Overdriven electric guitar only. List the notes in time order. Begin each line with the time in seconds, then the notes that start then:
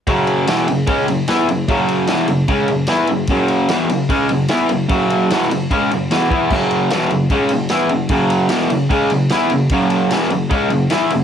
0.07 F#2 C#3 F#3
0.47 E2 B2 E3
0.68 F#2 C#3
0.87 C#3 G#3 C#4
1.08 F#2 C#3
1.28 E3 B3 E4
1.49 F#2 C#3
1.68 F#2 C#3 F#3
2.08 E2 B2 E3
2.29 F#2 C#3
2.48 C#3 G#3 C#4
2.69 F#2 C#3
2.88 E3 B3 E4
3.09 F#2 C#3
3.29 F#2 C#3 F#3
3.69 E2 B2 E3
3.90 F#2 C#3
4.09 C#3 G#3 C#4
4.30 F#2 C#3
4.49 E3 B3 E4
4.69 F#2 C#3
4.89 F#2 C#3 F#3
5.31 E2 B2 E3
5.51 F#2 C#3
5.71 C#3 G#3 C#4
5.91 F#2 C#3
6.11 E2 B2 E3
6.30 E3 B3 E4
6.51 F#2 C#3 F#3
6.92 E2 B2 E3
7.11 F#2 C#3
7.31 C#3 G#3 C#4
7.51 F#2 C#3
7.70 E3 B3 E4
7.91 F#2 C#3
8.10 F#2 C#3 F#3
8.50 E2 B2 E3
8.70 F#2 C#3
8.90 C#3 G#3 C#4
9.12 F#2 C#3
9.32 E3 B3 E4
9.52 F#2 C#3
9.72 F#2 C#3 F#3
10.10 E2 B2 E3
10.31 F#2 C#3
10.50 C#3 G#3 C#4
10.69 F#2 C#3
10.90 E3 B3 E4
11.11 F#2 C#3